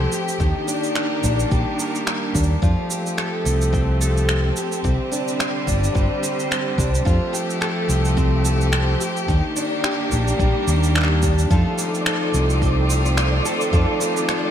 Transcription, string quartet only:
Already playing: F3 A3 C4 G4
0.40 D#3 A#3 D4
2.62 F3 A3 C4
4.83 D3 G3
7.06 F3 A3 G4
9.28 D#3 A#3 D4
11.51 D#3 A3 C4 F4

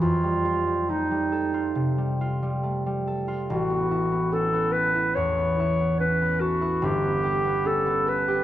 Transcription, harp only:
0.02 F2
0.24 G3
0.45 F4
0.67 G3
0.89 A3
1.11 G3
1.32 A4
1.54 F4
1.75 C3
1.98 G3
2.21 F4
2.42 G3
2.63 A3
2.86 G3
3.07 A4
3.28 F4
3.50 A1
3.70 B3
3.91 E4
4.12 B3
4.32 C#4
4.53 B3
4.74 A4
4.95 E4
5.17 E2
5.38 B3
5.60 E4
5.80 B3
6.00 C#4
6.22 B3
6.40 A4
6.61 E4
6.82 G1
7.03 B3
7.23 G4
7.45 B3
7.65 C#4
7.86 B3
8.07 A4
8.28 G4

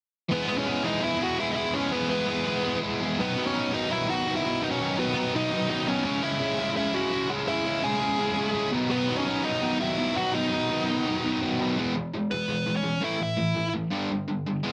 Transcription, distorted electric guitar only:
0.29 E3 G#3 B3 E4 G#4
0.47 E3 G#3 B3 E4 G#4
0.65 E3 G#3 B3 E4 G#4
0.84 E3 G#3 B3 E4 G#4
1.00 E3 G#3 B3 E4 G#4
1.19 E3 G#3 B3 E4 G#4
1.38 E3 G#3 B3 E4 G#4
1.56 E3 G#3 B3 E4 G#4
1.74 E3 G#3 B3 E4 G#4
1.92 E3 G#3 B3 E4 G#4
2.09 E3 G#3 B3 E4 G#4
2.27 E3 G#3 B3 E4 G#4
2.45 E3 G#3 B3 E4 G#4
2.63 E3 G#3 B3 E4 G#4
2.82 E3 G#3 B3 E4 G#4
3.00 E3 G#3 B3 E4 G#4
3.18 B2 D#3 F#3 B3 D#4
3.36 B2 D#3 F#3 B3 D#4
3.53 B2 D#3 F#3 B3 D#4
3.72 B2 D#3 F#3 B3 D#4
3.89 B2 D#3 F#3 B3 D#4
4.08 B2 D#3 F#3 B3 D#4
4.26 B2 D#3 F#3 B3 D#4
4.44 B2 D#3 F#3 B3 D#4
4.61 B2 D#3 F#3 B3 D#4
4.80 B2 D#3 F#3 B3 D#4
4.97 B2 D#3 F#3 B3 D#4
5.15 B2 D#3 F#3 B3 D#4
5.34 B2 D#3 F#3 B3 D#4
5.52 B2 D#3 F#3 B3 D#4
5.69 B2 D#3 F#3 B3 D#4
5.87 B2 D#3 F#3 B3 D#4
6.05 C#3 G#3 C#4 E4
6.22 C#3 G#3 C#4 E4
6.40 C#3 G#3 C#4 E4
6.59 C#3 G#3 C#4 E4
6.75 C#3 G#3 C#4 E4
6.93 C#3 G#3 C#4 E4
7.12 C#3 G#3 C#4 E4
7.29 C#3 G#3 C#4 E4
7.47 C#3 G#3 C#4 E4
7.66 C#3 G#3 C#4 E4
7.84 C#3 G#3 C#4 E4
8.00 C#3 G#3 C#4 E4
8.19 C#3 G#3 C#4 E4
8.37 C#3 G#3 C#4 E4
8.54 C#3 G#3 C#4 E4
8.72 B2 D#3 F#3 B3 D#4
8.89 B2 D#3 F#3 B3 D#4
9.09 B2 D#3 F#3 B3 D#4
9.26 B2 D#3 F#3 B3 D#4
9.44 B2 D#3 F#3 B3 D#4
9.62 B2 D#3 F#3 B3 D#4
9.81 B2 D#3 F#3 B3 D#4
9.97 B2 D#3 F#3 B3 D#4
10.15 B2 D#3 F#3 B3 D#4
10.34 B2 D#3 F#3 B3 D#4
10.52 B2 D#3 F#3 B3 D#4
10.70 B2 D#3 F#3 B3 D#4
10.89 B2 D#3 F#3 B3 D#4
11.06 B2 D#3 F#3 B3 D#4
11.24 B2 D#3 F#3 B3 D#4
11.41 B2 D#3 F#3 B3 D#4
11.59 B2 D#3 F#3 B3 D#4
11.78 E3 G#3 B3
11.95 E3 G#3
12.13 E3 G#3
12.32 E3 G#3
12.48 E3 G#3
12.67 E3 G#3
12.83 E3 G#3
13.01 A2 E3 A3
13.18 A2 E3
13.37 A2 E3
13.55 A2 E3
13.74 A2 E3
13.90 G2 D3 G3
14.11 G2 D3
14.28 G2 D3
14.46 G2 D3
14.63 E3 G#3 B3

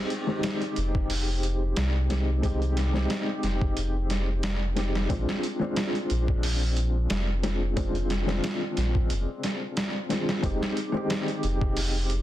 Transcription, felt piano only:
Already playing: G#3 C4 D#4 G4
0.27 G#3 C4 D#4
0.32 G4
2.10 G#3 C4 D#4 G4
2.42 G#3 C4 D#4 G4
2.93 G#3 C4 D#4
2.97 G4
4.75 G#3 C4 D#4 G4
5.09 G#3 C4 D4 F4
5.59 G#3 C4 D4
5.64 F4
7.43 G#3 C4 D4 F4
7.76 G#3 C4 D4 F4
8.26 G#3 C4 D4
8.31 F4
10.09 G#3 C4 D4 F4
10.42 G#3 C4 D#4 G4
10.92 G#3 C4 D#4
10.97 G4

